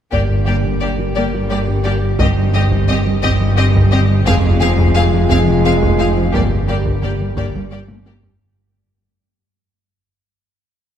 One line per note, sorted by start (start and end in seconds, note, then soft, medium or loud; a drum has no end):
0.12 4.28 G1 medium
0.12 1.04 G1 medium
0.12 1.04 G2 medium
0.12 0.23 G2 medium
0.12 2.16 D3 soft
0.12 4.23 G3 soft
0.12 0.21 A#3 soft
0.12 2.17 A#3 soft
0.12 0.20 G4 soft
0.12 4.24 G4 soft
0.12 0.20 D5 soft
0.12 taiko medium
0.30 0.41 G2 soft
0.46 0.58 G3 medium
0.46 0.56 A#3 soft
0.46 0.54 G4 soft
0.46 0.55 D5 soft
0.65 0.75 G2 medium
0.81 0.92 G2 medium
0.81 0.90 A#3 soft
0.81 0.90 G4 soft
0.81 0.89 D5 soft
0.99 1.09 G3 medium
1.15 2.08 G1 medium
1.15 1.27 G2 medium
1.15 2.08 G2 medium
1.15 1.25 A#3 soft
1.15 1.24 G4 soft
1.15 1.23 D5 soft
1.34 1.44 G3 medium
1.50 1.61 G3 medium
1.50 1.59 A#3 soft
1.50 1.59 G4 soft
1.50 1.58 D5 soft
1.68 1.79 G2 medium
1.85 1.96 G3 soft
1.85 1.94 A#3 soft
1.85 1.93 G4 soft
1.85 1.93 D5 soft
2.03 2.13 G3 medium
2.19 3.11 G1 medium
2.19 3.11 G2 medium
2.19 2.30 G2 medium
2.19 4.23 D#3 soft
2.19 2.28 C4 soft
2.19 6.34 C4 soft
2.19 2.29 G4 soft
2.19 2.28 D#5 soft
2.19 taiko medium
2.37 2.47 G2 medium
2.54 2.64 G3 medium
2.54 2.63 C4 medium
2.54 2.63 G4 medium
2.54 2.62 D#5 soft
2.71 2.82 G2 medium
2.71 taiko medium
2.88 2.99 G2 medium
2.88 2.97 C4 medium
2.88 2.97 G4 medium
2.88 2.96 D#5 medium
3.06 3.16 G3 medium
3.23 4.15 G1 medium
3.23 3.33 G2 medium
3.23 4.15 G2 medium
3.23 3.31 C4 medium
3.23 3.32 G4 medium
3.23 3.31 D#5 medium
3.23 taiko medium
3.40 3.51 G3 medium
3.57 3.68 G3 medium
3.57 3.66 C4 medium
3.57 3.65 G4 medium
3.57 3.66 D#5 medium
3.74 3.85 G2 medium
3.74 taiko medium
3.92 4.03 G3 medium
3.92 4.00 C4 medium
3.92 4.00 G4 medium
3.92 4.00 D#5 medium
4.10 4.20 G3 medium
4.26 5.18 F1 medium
4.26 6.35 F1 medium
4.26 5.18 F2 medium
4.26 4.37 F2 medium
4.26 6.17 C3 medium
4.26 6.17 G#3 medium
4.26 4.34 C4 medium
4.26 6.30 F4 medium
4.26 4.34 G#4 medium
4.26 4.35 F5 medium
4.26 taiko medium
4.44 4.54 F2 medium
4.60 4.71 F3 medium
4.60 4.70 C4 medium
4.60 4.68 G#4 medium
4.60 4.69 F5 medium
4.78 4.89 F2 medium
4.78 taiko medium
4.95 5.06 F2 medium
4.95 5.04 C4 medium
4.95 5.03 G#4 medium
4.95 5.03 F5 medium
5.13 5.23 F3 medium
5.29 6.21 F1 medium
5.29 5.40 F2 medium
5.29 6.22 F2 medium
5.29 5.39 C4 medium
5.29 5.37 G#4 medium
5.29 5.39 F5 medium
5.29 taiko medium
5.47 5.58 F3 medium
5.65 5.75 F3 medium
5.65 5.73 C4 medium
5.65 5.73 G#4 medium
5.65 5.73 F5 medium
5.82 5.93 F2 medium
5.82 taiko medium
5.98 6.10 F3 medium
5.98 6.07 C4 medium
5.98 6.06 G#4 medium
5.98 6.08 F5 soft
6.17 6.27 F3 medium
6.32 7.25 G1 medium
6.32 8.41 G1 medium
6.32 7.25 G2 medium
6.32 6.44 G2 medium
6.32 8.05 D3 medium
6.32 8.06 G3 medium
6.32 8.08 A#3 soft
6.32 6.42 A#3 medium
6.32 6.40 G4 soft
6.32 8.08 G4 soft
6.32 6.43 D5 soft
6.32 taiko medium
6.51 6.62 G2 medium
6.68 6.79 G3 medium
6.68 6.76 A#3 medium
6.68 6.76 G4 soft
6.68 6.77 D5 soft
6.85 6.96 G2 medium
6.85 taiko medium
7.02 7.14 G2 medium
7.02 7.10 A#3 soft
7.02 7.11 G4 soft
7.02 7.11 D5 soft
7.02 taiko mid medium
7.20 7.31 G3 medium
7.20 taiko mid soft
7.36 8.29 G1 medium
7.36 8.28 G2 medium
7.36 7.48 G2 medium
7.36 7.45 A#3 soft
7.36 7.45 G4 soft
7.36 7.46 D5 soft
7.36 taiko medium
7.55 7.65 G3 medium
7.71 7.82 G3 medium
7.71 7.79 A#3 soft
7.71 7.80 G4 soft
7.71 7.80 D5 soft
7.88 8.00 G2 medium
7.88 taiko high medium
8.06 8.17 G3 medium
8.06 8.14 A#3 soft
8.06 8.14 G4 soft
8.06 8.14 D5 soft
8.06 taiko high loud
8.23 8.34 G3 medium
8.23 taiko low medium